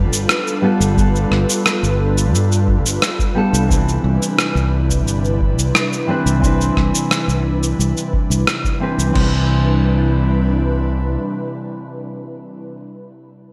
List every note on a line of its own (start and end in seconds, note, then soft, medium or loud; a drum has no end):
0.00 0.12 G2 medium
0.00 0.58 G3 medium
0.00 9.12 G3 medium
0.00 0.59 B3 medium
0.00 3.66 D4 medium
0.00 0.60 F4 medium
0.00 3.66 F4 medium
0.00 0.61 A4 medium
0.00 3.66 A4 medium
0.00 3.66 B4 medium
0.12 0.25 G1 medium
0.12 shaker medium
0.29 cross-stick medium
0.29 shaker soft
0.47 shaker soft
0.62 0.93 G3 medium
0.62 0.93 B3 medium
0.62 0.94 F4 medium
0.62 0.94 A4 medium
0.80 1.25 G1 medium
0.80 shaker medium
0.94 3.30 G3 medium
0.94 3.31 B3 medium
0.94 kick loud
0.98 3.32 F4 medium
0.98 3.34 A4 medium
0.98 shaker soft
1.16 shaker soft
1.31 1.44 G1 medium
1.31 cross-stick soft
1.50 shaker medium
1.66 cross-stick medium
1.66 shaker soft
1.83 2.34 G1 medium
1.83 shaker soft
2.18 shaker medium
2.34 2.85 G2 medium
2.34 shaker soft
2.52 shaker soft
2.68 kick medium
2.85 2.98 G1 medium
2.85 shaker medium
3.02 cross-stick medium
3.02 shaker medium
3.19 kick medium
3.19 shaker soft
3.35 3.65 G3 medium
3.35 3.66 B3 medium
3.35 3.66 F4 medium
3.35 3.67 A4 medium
3.53 3.97 C2 medium
3.53 shaker medium
3.67 9.12 C3 medium
3.67 6.03 E3 medium
3.67 6.04 C4 medium
3.67 9.12 D4 medium
3.67 9.12 E4 medium
3.67 9.12 B4 medium
3.67 kick loud
3.71 6.05 D4 medium
3.71 6.06 B4 medium
3.71 shaker soft
3.89 shaker soft
4.04 4.17 C2 medium
4.23 shaker medium
4.39 cross-stick medium
4.39 shaker soft
4.55 5.06 C2 medium
4.55 shaker soft
4.90 kick medium
4.90 shaker medium
5.06 5.57 G1 medium
5.06 shaker soft
5.25 shaker soft
5.41 kick medium
5.57 5.70 C2 medium
5.57 shaker medium
5.75 cross-stick medium
5.75 shaker soft
5.93 shaker soft
6.07 6.38 E3 medium
6.07 6.38 C4 medium
6.07 6.39 D4 medium
6.07 6.39 B4 medium
6.26 6.70 C2 medium
6.26 shaker medium
6.40 8.76 E3 medium
6.40 8.77 C4 medium
6.40 kick medium
6.44 8.78 D4 medium
6.44 8.79 B4 medium
6.44 shaker soft
6.61 shaker soft
6.77 6.90 C2 medium
6.77 kick medium
6.77 cross-stick soft
6.95 shaker medium
7.11 cross-stick medium
7.11 shaker soft
7.28 7.72 C2 medium
7.28 shaker soft
7.63 shaker medium
7.79 7.92 C2 medium
7.79 shaker soft
7.97 shaker soft
8.13 kick medium
8.30 8.43 C2 medium
8.30 shaker medium
8.47 cross-stick medium
8.47 shaker soft
8.64 kick medium
8.64 shaker soft
8.80 9.09 E3 medium
8.80 9.11 C4 medium
8.80 9.12 D4 medium
8.80 9.12 B4 medium
8.98 9.11 C2 medium
8.98 shaker soft
9.10 12.76 E3 medium
9.10 12.80 C4 medium
9.15 11.16 C2 medium
9.15 12.64 C3 medium
9.15 12.64 G3 medium
9.15 12.64 D4 medium
9.15 12.83 D4 medium
9.15 12.64 E4 medium
9.15 12.64 B4 medium
9.15 kick loud
9.15 crash medium
9.20 12.86 B4 medium